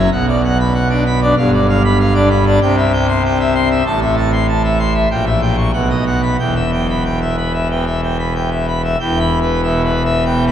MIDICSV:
0, 0, Header, 1, 2, 480
1, 0, Start_track
1, 0, Key_signature, 1, "minor"
1, 0, Tempo, 625000
1, 1049, Time_signature, 4, 2, 24, 8
1, 4407, Tempo, 650759
1, 6807, Tempo, 633580
1, 7963, End_track
2, 0, Start_track
2, 0, Title_t, "Pipe organ"
2, 0, Program_c, 0, 19
2, 91, Note_on_c, 0, 47, 72
2, 92, Note_on_c, 0, 78, 63
2, 93, Note_on_c, 0, 35, 75
2, 198, Note_off_c, 0, 78, 0
2, 219, Note_on_c, 0, 74, 60
2, 322, Note_off_c, 0, 74, 0
2, 339, Note_on_c, 0, 78, 59
2, 442, Note_off_c, 0, 78, 0
2, 459, Note_on_c, 0, 83, 75
2, 562, Note_off_c, 0, 83, 0
2, 570, Note_on_c, 0, 78, 60
2, 677, Note_off_c, 0, 78, 0
2, 688, Note_on_c, 0, 62, 56
2, 690, Note_on_c, 0, 74, 67
2, 796, Note_off_c, 0, 62, 0
2, 796, Note_off_c, 0, 74, 0
2, 817, Note_on_c, 0, 83, 65
2, 921, Note_off_c, 0, 83, 0
2, 938, Note_on_c, 0, 62, 60
2, 940, Note_on_c, 0, 74, 66
2, 1023, Note_off_c, 0, 47, 0
2, 1024, Note_off_c, 0, 35, 0
2, 1037, Note_off_c, 0, 62, 0
2, 1038, Note_off_c, 0, 74, 0
2, 1053, Note_on_c, 0, 31, 79
2, 1054, Note_on_c, 0, 43, 82
2, 1057, Note_on_c, 0, 77, 78
2, 1161, Note_off_c, 0, 77, 0
2, 1180, Note_on_c, 0, 74, 68
2, 1282, Note_off_c, 0, 74, 0
2, 1300, Note_on_c, 0, 77, 69
2, 1402, Note_off_c, 0, 77, 0
2, 1418, Note_on_c, 0, 83, 93
2, 1521, Note_off_c, 0, 83, 0
2, 1537, Note_on_c, 0, 77, 68
2, 1640, Note_off_c, 0, 77, 0
2, 1650, Note_on_c, 0, 62, 66
2, 1651, Note_on_c, 0, 74, 64
2, 1756, Note_off_c, 0, 62, 0
2, 1757, Note_off_c, 0, 74, 0
2, 1773, Note_on_c, 0, 83, 82
2, 1878, Note_off_c, 0, 83, 0
2, 1891, Note_on_c, 0, 74, 63
2, 1892, Note_on_c, 0, 62, 65
2, 1981, Note_off_c, 0, 31, 0
2, 1982, Note_off_c, 0, 43, 0
2, 1992, Note_off_c, 0, 62, 0
2, 1992, Note_off_c, 0, 74, 0
2, 2011, Note_on_c, 0, 48, 94
2, 2012, Note_on_c, 0, 36, 87
2, 2013, Note_on_c, 0, 79, 77
2, 2118, Note_off_c, 0, 79, 0
2, 2136, Note_on_c, 0, 76, 65
2, 2240, Note_off_c, 0, 76, 0
2, 2250, Note_on_c, 0, 79, 68
2, 2356, Note_off_c, 0, 79, 0
2, 2371, Note_on_c, 0, 84, 85
2, 2476, Note_off_c, 0, 84, 0
2, 2493, Note_on_c, 0, 79, 68
2, 2597, Note_off_c, 0, 79, 0
2, 2610, Note_on_c, 0, 76, 74
2, 2715, Note_off_c, 0, 76, 0
2, 2726, Note_on_c, 0, 84, 78
2, 2832, Note_off_c, 0, 84, 0
2, 2848, Note_on_c, 0, 76, 76
2, 2937, Note_off_c, 0, 36, 0
2, 2937, Note_off_c, 0, 48, 0
2, 2948, Note_off_c, 0, 76, 0
2, 2960, Note_on_c, 0, 45, 79
2, 2962, Note_on_c, 0, 81, 85
2, 2963, Note_on_c, 0, 33, 85
2, 3069, Note_off_c, 0, 81, 0
2, 3081, Note_on_c, 0, 76, 72
2, 3189, Note_off_c, 0, 76, 0
2, 3201, Note_on_c, 0, 81, 69
2, 3308, Note_off_c, 0, 81, 0
2, 3321, Note_on_c, 0, 84, 99
2, 3428, Note_off_c, 0, 84, 0
2, 3444, Note_on_c, 0, 81, 67
2, 3550, Note_off_c, 0, 81, 0
2, 3566, Note_on_c, 0, 76, 68
2, 3671, Note_off_c, 0, 76, 0
2, 3682, Note_on_c, 0, 84, 79
2, 3789, Note_off_c, 0, 84, 0
2, 3801, Note_on_c, 0, 76, 67
2, 3891, Note_off_c, 0, 45, 0
2, 3892, Note_off_c, 0, 33, 0
2, 3903, Note_off_c, 0, 76, 0
2, 3919, Note_on_c, 0, 34, 77
2, 3921, Note_on_c, 0, 79, 62
2, 3924, Note_on_c, 0, 46, 76
2, 4029, Note_off_c, 0, 79, 0
2, 4042, Note_on_c, 0, 76, 57
2, 4150, Note_off_c, 0, 76, 0
2, 4161, Note_on_c, 0, 79, 57
2, 4270, Note_off_c, 0, 79, 0
2, 4278, Note_on_c, 0, 85, 74
2, 4385, Note_off_c, 0, 85, 0
2, 4391, Note_off_c, 0, 34, 0
2, 4394, Note_off_c, 0, 46, 0
2, 4400, Note_on_c, 0, 35, 53
2, 4403, Note_on_c, 0, 78, 54
2, 4404, Note_on_c, 0, 47, 54
2, 4511, Note_off_c, 0, 78, 0
2, 4525, Note_on_c, 0, 75, 49
2, 4632, Note_off_c, 0, 75, 0
2, 4649, Note_on_c, 0, 78, 55
2, 4755, Note_off_c, 0, 78, 0
2, 4767, Note_on_c, 0, 83, 70
2, 4869, Note_off_c, 0, 35, 0
2, 4869, Note_off_c, 0, 83, 0
2, 4871, Note_off_c, 0, 47, 0
2, 4890, Note_on_c, 0, 40, 61
2, 4891, Note_on_c, 0, 79, 59
2, 4895, Note_on_c, 0, 28, 66
2, 4998, Note_off_c, 0, 79, 0
2, 5011, Note_on_c, 0, 76, 45
2, 5118, Note_off_c, 0, 76, 0
2, 5133, Note_on_c, 0, 79, 51
2, 5239, Note_off_c, 0, 79, 0
2, 5259, Note_on_c, 0, 83, 66
2, 5362, Note_off_c, 0, 83, 0
2, 5375, Note_on_c, 0, 79, 49
2, 5480, Note_off_c, 0, 79, 0
2, 5497, Note_on_c, 0, 76, 45
2, 5601, Note_off_c, 0, 76, 0
2, 5614, Note_on_c, 0, 83, 49
2, 5720, Note_off_c, 0, 83, 0
2, 5732, Note_on_c, 0, 76, 44
2, 5838, Note_off_c, 0, 76, 0
2, 5859, Note_on_c, 0, 79, 51
2, 5860, Note_on_c, 0, 47, 48
2, 5963, Note_off_c, 0, 47, 0
2, 5963, Note_off_c, 0, 79, 0
2, 5974, Note_on_c, 0, 76, 44
2, 6079, Note_off_c, 0, 76, 0
2, 6099, Note_on_c, 0, 79, 46
2, 6202, Note_off_c, 0, 79, 0
2, 6217, Note_on_c, 0, 83, 48
2, 6321, Note_off_c, 0, 83, 0
2, 6340, Note_on_c, 0, 79, 48
2, 6442, Note_off_c, 0, 79, 0
2, 6456, Note_on_c, 0, 76, 45
2, 6560, Note_off_c, 0, 76, 0
2, 6573, Note_on_c, 0, 83, 47
2, 6677, Note_off_c, 0, 83, 0
2, 6695, Note_on_c, 0, 76, 46
2, 6778, Note_off_c, 0, 40, 0
2, 6780, Note_off_c, 0, 28, 0
2, 6792, Note_off_c, 0, 76, 0
2, 6812, Note_on_c, 0, 28, 73
2, 6813, Note_on_c, 0, 40, 64
2, 6814, Note_on_c, 0, 79, 68
2, 6954, Note_off_c, 0, 79, 0
2, 6961, Note_on_c, 0, 83, 84
2, 7107, Note_off_c, 0, 83, 0
2, 7131, Note_on_c, 0, 71, 49
2, 7273, Note_off_c, 0, 71, 0
2, 7290, Note_on_c, 0, 47, 57
2, 7293, Note_on_c, 0, 76, 57
2, 7433, Note_off_c, 0, 76, 0
2, 7449, Note_on_c, 0, 71, 58
2, 7503, Note_off_c, 0, 47, 0
2, 7591, Note_off_c, 0, 71, 0
2, 7611, Note_on_c, 0, 76, 61
2, 7752, Note_off_c, 0, 76, 0
2, 7765, Note_on_c, 0, 79, 58
2, 7770, Note_on_c, 0, 47, 58
2, 7908, Note_off_c, 0, 79, 0
2, 7927, Note_on_c, 0, 83, 63
2, 7963, Note_off_c, 0, 28, 0
2, 7963, Note_off_c, 0, 40, 0
2, 7963, Note_off_c, 0, 47, 0
2, 7963, Note_off_c, 0, 83, 0
2, 7963, End_track
0, 0, End_of_file